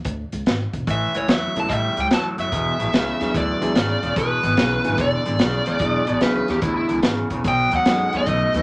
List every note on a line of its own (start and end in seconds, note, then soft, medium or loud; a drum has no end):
0.05 0.22 D2 medium
0.05 kick loud
0.05 closed hi-hat medium
0.32 0.42 C#2 medium
0.32 closed hi-hat medium
0.46 0.64 G#1 medium
0.46 snare medium
0.46 closed hi-hat medium
0.73 0.82 E1 medium
0.73 kick medium
0.73 closed hi-hat medium
0.87 1.05 A1 medium
0.87 1.12 A2 medium
0.87 1.12 E3 medium
0.87 1.17 E5 medium
0.87 kick medium
0.87 closed hi-hat medium
1.14 1.23 C#2 medium
1.14 1.27 A2 medium
1.14 1.28 E3 medium
1.14 1.31 C#5 medium
1.14 closed hi-hat medium
1.28 1.45 E2 medium
1.28 1.53 A2 medium
1.28 1.54 F#3 medium
1.28 1.58 E5 medium
1.28 snare loud
1.28 closed hi-hat medium
1.56 1.65 C#2 medium
1.56 1.69 A2 medium
1.56 1.69 F#3 medium
1.56 1.69 G3 medium
1.56 1.69 B3 medium
1.56 1.69 C#4 medium
1.56 1.69 E4 medium
1.56 1.69 A4 medium
1.56 1.69 A5 medium
1.56 closed hi-hat medium
1.69 1.87 A1 medium
1.69 1.94 A2 medium
1.69 1.95 G3 medium
1.69 1.71 D#5 medium
1.69 kick loud
1.69 closed hi-hat medium
1.73 2.00 E5 medium
1.97 2.06 C#2 medium
1.97 2.10 A2 medium
1.97 2.10 G3 medium
1.97 2.05 G5 medium
1.97 closed hi-hat medium
2.11 2.28 E2 medium
2.11 2.36 A2 medium
2.11 2.36 F#3 medium
2.11 2.21 A5 medium
2.11 snare loud
2.11 closed hi-hat medium
2.38 2.47 F#1 medium
2.38 2.51 A2 medium
2.38 2.51 F#3 medium
2.38 3.38 E5 medium
2.38 closed hi-hat medium
2.52 2.69 E1 medium
2.52 2.77 E2 medium
2.52 2.77 B2 medium
2.52 kick medium
2.52 closed hi-hat medium
2.79 2.88 A1 medium
2.79 2.92 E2 medium
2.79 2.92 B2 medium
2.79 closed hi-hat medium
2.93 3.11 C#2 medium
2.93 3.18 E2 medium
2.93 3.18 C#3 loud
2.93 snare loud
2.93 closed hi-hat medium
3.20 3.29 E2 medium
3.20 3.33 E2 medium
3.20 3.33 C#3 medium
3.20 3.59 F#3 medium
3.20 3.59 B3 medium
3.20 3.59 D4 medium
3.20 3.59 E4 medium
3.20 3.59 G#4 medium
3.20 snare soft
3.20 closed hi-hat medium
3.34 3.52 D2 medium
3.34 3.59 E2 medium
3.34 3.59 D3 medium
3.34 4.14 D5 medium
3.34 kick loud
3.34 closed hi-hat medium
3.61 3.70 C#2 medium
3.61 3.74 E2 medium
3.61 3.74 D3 medium
3.61 3.74 F#3 medium
3.61 3.74 B3 medium
3.61 3.74 D4 medium
3.61 3.74 E4 medium
3.61 3.75 G#4 medium
3.61 closed hi-hat medium
3.75 3.93 G#1 medium
3.75 4.00 E2 medium
3.75 4.00 C#3 medium
3.75 snare medium
3.75 closed hi-hat medium
4.02 4.12 E1 medium
4.02 4.14 E2 medium
4.02 4.15 C#3 medium
4.02 closed hi-hat medium
4.16 4.33 E1 medium
4.16 4.41 E2 medium
4.16 4.41 B2 medium
4.16 5.01 B4 medium
4.16 kick loud
4.16 closed hi-hat medium
4.43 4.52 G#1 medium
4.43 4.56 E2 medium
4.43 4.56 B2 medium
4.43 closed hi-hat medium
4.57 4.75 B1 medium
4.57 4.82 E2 medium
4.57 4.82 C#3 medium
4.57 snare loud
4.57 closed hi-hat medium
4.84 4.94 G#1 medium
4.84 4.97 E2 medium
4.84 4.97 C#3 medium
4.84 4.97 F#3 medium
4.84 4.97 B3 medium
4.84 4.97 D4 medium
4.84 4.97 E4 medium
4.84 4.97 G#4 medium
4.84 closed hi-hat medium
4.98 5.15 E1 medium
4.98 5.23 E2 medium
4.98 5.23 D3 medium
4.98 6.19 D5 medium
4.98 kick loud
4.98 closed hi-hat medium
5.25 5.35 G#1 medium
5.25 5.38 E2 medium
5.25 5.38 D3 medium
5.25 closed hi-hat medium
5.39 5.57 B1 medium
5.39 5.64 E2 medium
5.39 5.64 C#3 medium
5.39 snare loud
5.39 closed hi-hat medium
5.66 5.76 C#2 medium
5.66 5.79 E2 medium
5.66 5.79 C#3 medium
5.66 6.20 D5 medium
5.66 closed hi-hat medium
5.79 5.97 E1 medium
5.79 6.05 E2 medium
5.79 6.05 B2 medium
5.79 6.05 F#3 medium
5.79 6.05 B3 medium
5.79 6.05 D4 medium
5.79 6.05 E4 medium
5.79 6.06 G#4 medium
5.79 kick loud
5.79 closed hi-hat medium
6.07 6.17 A1 medium
6.07 6.20 E2 medium
6.07 6.20 B2 medium
6.07 closed hi-hat medium
6.21 6.39 C#2 medium
6.21 6.46 E2 medium
6.21 6.46 C#3 medium
6.21 6.46 F#3 medium
6.21 6.46 B3 medium
6.21 6.46 D4 medium
6.21 6.46 E4 medium
6.21 6.47 G#4 medium
6.21 6.35 B4 medium
6.21 snare medium
6.21 closed hi-hat medium
6.36 6.49 B4 medium
6.48 6.61 E2 medium
6.48 6.58 E2 medium
6.48 6.62 C#3 medium
6.48 6.63 G4 medium
6.48 snare soft
6.48 closed hi-hat medium
6.62 6.80 D2 medium
6.62 6.87 E2 medium
6.62 6.87 D3 medium
6.62 6.75 E4 medium
6.62 kick loud
6.62 closed hi-hat medium
6.77 6.99 E4 medium
6.89 6.99 C#2 medium
6.89 7.02 E2 medium
6.89 7.02 D3 medium
6.89 closed hi-hat medium
7.03 7.21 G#1 medium
7.03 7.28 E2 medium
7.03 7.28 C#3 medium
7.03 snare loud
7.03 closed hi-hat medium
7.30 7.39 E1 medium
7.30 7.44 E2 medium
7.30 7.44 C#3 medium
7.30 kick medium
7.30 closed hi-hat medium
7.44 7.62 B1 medium
7.44 7.70 B2 medium
7.44 7.70 F#3 medium
7.44 7.72 G5 medium
7.44 kick loud
7.44 closed hi-hat medium
7.71 7.81 D#2 medium
7.71 7.85 B2 medium
7.71 7.85 F#3 medium
7.71 closed hi-hat medium
7.76 8.16 F#5 medium
7.85 8.03 F#2 medium
7.85 8.11 B2 medium
7.85 8.49 F#3 medium
7.85 8.11 G#3 medium
7.85 8.49 B3 medium
7.85 8.49 C#4 medium
7.85 8.49 D#4 medium
7.85 8.50 A4 medium
7.85 snare loud
7.85 closed hi-hat medium
8.13 8.22 D#2 medium
8.13 8.26 B2 medium
8.13 8.26 G#3 medium
8.13 8.62 D#5 medium
8.13 closed hi-hat medium
8.26 8.44 B1 medium
8.26 8.52 B2 medium
8.26 8.52 A3 medium
8.26 kick loud
8.26 closed hi-hat medium
8.54 8.62 D#2 medium
8.54 8.62 B2 medium
8.54 8.62 F#3 medium
8.54 8.62 A3 medium
8.54 8.62 B3 medium
8.54 8.62 C#4 medium
8.54 8.62 D#4 medium
8.54 8.62 B4 medium
8.54 closed hi-hat medium